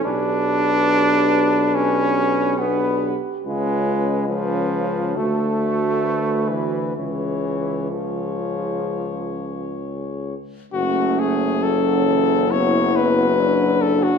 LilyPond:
<<
  \new Staff \with { instrumentName = "Flugelhorn" } { \time 4/4 \key fis \minor \tempo 4 = 69 b'2. b'8 r8 | b'4 b'4 a'4 b'4 | cis''4 cis''2~ cis''8 r8 | fis'8 gis'8 a'4 cis''8 b'4 a'16 fis'16 | }
  \new Staff \with { instrumentName = "French horn section" } { \time 4/4 \key fis \minor g'2. g'4 | eis'4 eis'4 fis'2 | gis'4 gis'2~ gis'8 r8 | cis'2 b4 d'4 | }
  \new Staff \with { instrumentName = "Euphonium" } { \time 4/4 \key fis \minor d'2. d'8 r8 | cis'4 cis'4 fis'2 | cis'4 cis'2~ cis'8 r8 | r2 e'4 d'4 | }
  \new Staff \with { instrumentName = "Trombone" } { \clef bass \time 4/4 \key fis \minor d'2 cis'4 b8 r8 | gis4 eis4 a4. e8 | e4 eis2 r4 | a4 fis8 e8 fis2 | }
  \new Staff \with { instrumentName = "Tuba" } { \clef bass \time 4/4 \key fis \minor b,,2.~ b,,8 r8 | cis,2 d,2 | cis,2.~ cis,8 r8 | fis,,1 | }
>>